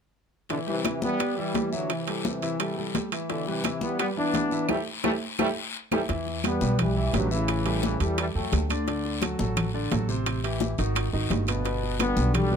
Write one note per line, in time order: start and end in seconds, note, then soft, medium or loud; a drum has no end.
0.49 0.59 B2 medium
0.49 0.58 D3 medium
0.49 0.64 E3 medium
0.49 0.64 E4 medium
0.49 0.64 E5 medium
0.49 high bongo medium
0.49 high conga soft
0.49 high timbale medium
0.49 long guiro medium
0.67 1.01 C3 medium
0.67 1.00 E3 medium
0.67 0.81 G3 medium
0.67 0.81 G4 medium
0.67 0.82 B4 medium
0.67 high bongo soft
0.67 high conga soft
0.84 1.13 E3 medium
0.84 1.13 E4 medium
0.84 1.14 E5 medium
0.84 high bongo medium
0.84 high conga medium
0.84 high timbale medium
0.84 low timbale medium
0.84 short guiro medium
0.84 claves medium
1.02 1.36 G3 medium
1.02 1.36 B3 loud
1.02 high bongo soft
1.02 high conga medium
1.02 short guiro medium
1.19 1.34 G3 medium
1.19 1.34 G4 medium
1.19 1.34 B4 medium
1.19 high bongo medium
1.19 high conga soft
1.19 high timbale medium
1.19 long guiro medium
1.19 claves medium
1.37 1.66 E3 medium
1.37 1.71 E3 medium
1.37 1.70 G3 medium
1.37 1.66 E4 medium
1.37 1.66 E5 medium
1.37 high conga soft
1.54 high bongo soft
1.54 low bongo medium
1.54 high conga medium
1.54 high timbale medium
1.54 low timbale medium
1.54 short guiro medium
1.72 1.91 D3 medium
1.72 2.01 E3 medium
1.72 1.90 F#3 medium
1.72 2.01 E4 medium
1.72 2.01 E5 medium
1.72 high bongo soft
1.72 high conga soft
1.72 short guiro medium
1.90 2.26 C3 medium
1.90 2.25 E3 medium
1.90 high bongo medium
1.90 high conga soft
1.90 high timbale medium
1.90 long guiro medium
1.90 claves medium
2.07 2.36 G3 medium
2.07 2.36 G4 medium
2.07 2.36 A4 medium
2.07 high bongo soft
2.07 high conga soft
2.07 high timbale medium
2.25 2.92 C3 medium
2.25 2.92 E3 medium
2.25 high bongo medium
2.25 high conga loud
2.25 low timbale medium
2.25 short guiro medium
2.42 2.57 E3 medium
2.42 2.57 E4 medium
2.42 2.57 E5 medium
2.42 high bongo soft
2.42 high timbale medium
2.42 short guiro medium
2.60 2.74 G3 medium
2.60 2.74 G4 medium
2.60 2.75 A4 medium
2.60 high bongo medium
2.60 high conga soft
2.60 high timbale medium
2.60 long guiro medium
2.60 claves medium
2.77 3.06 G3 medium
2.77 3.06 G4 medium
2.77 3.06 A4 medium
2.77 high conga soft
2.95 high bongo soft
2.95 low bongo medium
2.95 high conga medium
2.95 high timbale medium
2.95 low timbale medium
2.95 short guiro medium
3.12 3.26 E3 medium
3.12 3.27 E4 medium
3.12 3.27 E5 medium
3.12 high bongo soft
3.12 high timbale medium
3.12 short guiro medium
3.12 claves medium
3.30 3.47 B2 medium
3.30 3.47 D3 medium
3.30 3.44 E3 medium
3.30 3.44 E4 medium
3.30 3.44 E5 medium
3.30 high bongo medium
3.30 high conga soft
3.30 high timbale medium
3.30 long guiro medium
3.46 3.81 C3 medium
3.46 3.80 E3 medium
3.46 3.61 G3 medium
3.46 3.62 G4 medium
3.46 3.62 B4 medium
3.46 high bongo soft
3.46 high conga soft
3.64 3.94 E3 medium
3.64 3.94 E4 medium
3.64 3.94 E5 medium
3.64 high bongo medium
3.64 high conga loud
3.64 high timbale medium
3.64 low timbale medium
3.64 short guiro medium
3.64 claves medium
3.81 3.99 G3 medium
3.81 3.99 B3 loud
3.81 high bongo soft
3.81 high conga medium
3.81 short guiro medium
3.99 4.14 G3 medium
3.99 4.09 G3 medium
3.99 4.08 B3 medium
3.99 4.14 G4 medium
3.99 4.14 B4 medium
3.99 high bongo medium
3.99 high conga soft
3.99 high timbale medium
3.99 long guiro medium
3.99 claves medium
4.16 4.46 E3 medium
4.16 4.67 B3 medium
4.16 4.66 D4 loud
4.16 4.46 E4 medium
4.16 4.46 E5 medium
4.16 high conga soft
4.34 high bongo soft
4.34 low bongo medium
4.34 high conga medium
4.34 high timbale medium
4.34 low timbale medium
4.34 short guiro medium
4.51 4.66 E3 medium
4.51 4.66 E4 medium
4.51 4.67 E5 medium
4.51 high bongo soft
4.51 high conga soft
4.51 short guiro medium
4.69 4.78 E3 medium
4.69 4.78 G3 medium
4.69 4.78 A3 medium
4.69 4.81 E4 loud
4.69 4.81 G4 loud
4.69 4.81 A4 medium
4.69 high bongo medium
4.69 high conga loud
4.69 high timbale medium
4.69 long guiro medium
4.69 claves loud
5.04 5.13 E3 loud
5.04 5.12 G3 medium
5.04 5.12 A3 loud
5.04 5.15 E4 medium
5.04 5.15 G4 medium
5.04 5.15 A4 medium
5.04 high bongo loud
5.04 high conga loud
5.04 high timbale loud
5.04 long guiro medium
5.04 claves medium
5.39 5.48 E3 medium
5.39 5.48 G3 loud
5.39 5.48 A3 loud
5.39 5.50 E4 loud
5.39 5.50 G4 loud
5.39 5.50 A4 medium
5.39 high bongo loud
5.39 high conga medium
5.39 high timbale medium
5.39 long guiro loud
5.39 claves loud
5.92 6.00 E3 medium
5.92 6.01 G3 medium
5.92 6.01 A3 medium
5.92 6.03 E4 medium
5.92 6.03 G4 medium
5.92 6.03 A4 medium
5.92 high bongo medium
5.92 high conga medium
5.92 high timbale medium
5.92 long guiro medium
5.92 claves medium
6.09 6.58 E2 medium
6.09 6.38 E3 medium
6.09 6.38 E4 medium
6.09 6.38 E5 medium
6.09 high bongo medium
6.09 high conga soft
6.09 high timbale medium
6.09 long guiro medium
6.26 high bongo soft
6.26 high conga soft
6.44 6.58 G3 medium
6.44 6.77 G3 medium
6.44 6.77 B3 loud
6.44 6.58 G4 medium
6.44 6.58 B4 medium
6.44 high bongo medium
6.44 high conga loud
6.44 high timbale medium
6.44 low timbale medium
6.44 short guiro medium
6.44 claves medium
6.61 7.10 B1 medium
6.61 6.90 G3 medium
6.61 6.90 G4 medium
6.61 6.90 B4 medium
6.61 high bongo soft
6.61 high conga medium
6.61 short guiro medium
6.79 7.15 E3 medium
6.79 7.14 G3 loud
6.79 high bongo medium
6.79 high conga soft
6.79 low conga medium
6.79 high timbale loud
6.79 long guiro medium
6.79 claves medium
6.96 7.11 E3 medium
6.96 7.11 E4 medium
6.96 7.11 E5 medium
6.96 high conga soft
7.13 7.95 A1 loud
7.13 7.31 D3 medium
7.13 7.31 F#3 medium
7.13 7.28 G3 medium
7.13 7.28 G4 medium
7.13 7.28 B4 medium
7.13 high bongo soft
7.13 low bongo medium
7.13 high conga medium
7.13 high timbale medium
7.13 low timbale medium
7.13 short guiro medium
7.31 7.80 C#3 medium
7.31 7.59 E3 medium
7.31 7.80 E3 medium
7.31 7.60 E4 medium
7.31 7.60 E5 medium
7.31 high bongo soft
7.31 high conga soft
7.31 short guiro medium
7.48 high bongo medium
7.48 high conga soft
7.48 high timbale medium
7.48 long guiro medium
7.48 claves medium
7.65 7.94 G3 medium
7.65 7.94 G4 medium
7.65 7.95 A4 medium
7.65 high bongo soft
7.65 high conga soft
7.65 high timbale medium
7.83 8.00 C#3 medium
7.83 8.00 E3 medium
7.83 high bongo medium
7.83 high conga medium
7.83 low timbale medium
7.83 short guiro medium
8.00 8.33 E2 medium
8.00 8.19 E3 medium
8.00 8.29 G3 medium
8.00 8.18 G3 medium
8.00 8.29 G4 medium
8.00 8.30 A4 medium
8.00 high bongo soft
8.00 high timbale medium
8.00 short guiro medium
8.18 8.27 E3 medium
8.18 8.27 G3 medium
8.18 high bongo medium
8.18 high conga soft
8.18 high timbale medium
8.18 long guiro medium
8.18 claves medium
8.35 8.51 E2 medium
8.35 8.69 F#3 medium
8.35 8.64 A3 medium
8.35 8.68 A3 medium
8.35 8.64 A4 medium
8.35 8.64 G5 medium
8.35 high conga soft
8.52 9.34 D2 loud
8.52 high bongo soft
8.52 low bongo medium
8.52 high conga medium
8.52 high timbale medium
8.52 low timbale medium
8.52 short guiro medium
8.70 8.84 D3 medium
8.70 8.85 D4 medium
8.70 8.85 D5 medium
8.70 high bongo soft
8.70 high conga medium
8.70 high timbale medium
8.70 short guiro medium
8.70 claves medium
8.87 9.16 D3 medium
8.87 9.16 D4 medium
8.87 9.16 D5 medium
8.87 high bongo medium
8.87 high conga soft
8.87 high timbale medium
8.87 long guiro medium
9.04 high bongo soft
9.04 high conga soft
9.22 9.36 F#3 medium
9.22 9.37 F#4 medium
9.22 9.37 A4 medium
9.22 high bongo medium
9.22 high conga loud
9.22 high timbale medium
9.22 low timbale medium
9.22 short guiro medium
9.22 claves medium
9.39 9.88 A1 medium
9.39 9.68 F#3 medium
9.39 9.68 F#4 medium
9.39 9.68 A4 medium
9.39 high bongo soft
9.39 high conga loud
9.39 short guiro medium
9.57 high bongo medium
9.57 high conga soft
9.57 low conga medium
9.57 high timbale medium
9.57 long guiro medium
9.57 claves medium
9.74 9.88 D3 medium
9.74 9.89 D4 medium
9.74 9.89 D5 medium
9.74 high conga soft
9.91 10.73 A1 medium
9.91 10.06 F#3 medium
9.91 10.06 F#4 medium
9.91 10.06 A4 medium
9.91 high bongo soft
9.91 low bongo medium
9.91 high conga medium
9.91 high timbale medium
9.91 low timbale medium
9.91 short guiro medium
10.09 10.37 C3 medium
10.09 10.38 C4 medium
10.09 10.38 C5 medium
10.09 high bongo soft
10.09 high conga soft
10.09 short guiro medium
10.26 high bongo medium
10.26 high conga soft
10.26 high timbale medium
10.26 long guiro medium
10.26 claves medium
10.43 10.72 E3 medium
10.43 10.72 E4 medium
10.43 10.73 G4 medium
10.43 high bongo soft
10.43 high conga soft
10.43 high timbale medium
10.60 high bongo medium
10.60 high conga loud
10.60 low timbale medium
10.60 short guiro medium
10.78 11.11 G#1 medium
10.78 11.07 D#3 medium
10.78 11.07 D#4 medium
10.78 11.07 F#4 medium
10.78 high bongo soft
10.78 high timbale medium
10.78 short guiro medium
10.95 high bongo medium
10.95 high conga soft
10.95 high timbale loud
10.95 long guiro medium
10.95 claves medium
11.13 11.29 G#1 medium
11.13 11.42 D#3 medium
11.13 11.42 D#4 medium
11.13 11.42 F#4 medium
11.13 high conga soft
11.30 12.11 G1 medium
11.30 high bongo soft
11.30 low bongo medium
11.30 high conga medium
11.30 high timbale medium
11.30 low timbale medium
11.30 short guiro medium
11.47 11.62 B2 medium
11.47 11.62 B3 medium
11.47 11.63 B4 medium
11.47 high bongo soft
11.47 high timbale medium
11.47 short guiro medium
11.47 claves medium
11.65 11.94 B2 medium
11.65 11.94 B3 medium
11.65 11.94 B4 medium
11.65 high bongo medium
11.65 high conga soft
11.65 high timbale medium
11.65 long guiro medium
11.83 high bongo soft
11.83 high conga soft
11.99 12.14 D3 medium
11.99 12.33 G3 medium
11.99 12.33 B3 loud
11.99 12.14 D4 medium
11.99 12.14 F#4 medium
11.99 high bongo medium
11.99 high conga medium
11.99 high timbale medium
11.99 low timbale medium
11.99 short guiro medium
11.99 claves medium
12.17 12.56 B1 loud
12.17 12.46 D3 medium
12.17 12.46 D4 medium
12.17 12.46 F#4 medium
12.17 high bongo soft
12.17 high conga medium
12.17 short guiro medium
12.34 12.56 D3 medium
12.34 12.56 G3 loud
12.34 high bongo medium
12.34 high conga soft
12.34 low conga medium
12.34 high timbale medium
12.34 long guiro medium
12.34 claves medium
12.51 12.56 B2 medium
12.51 12.56 B3 medium
12.51 12.56 B4 medium
12.51 high conga soft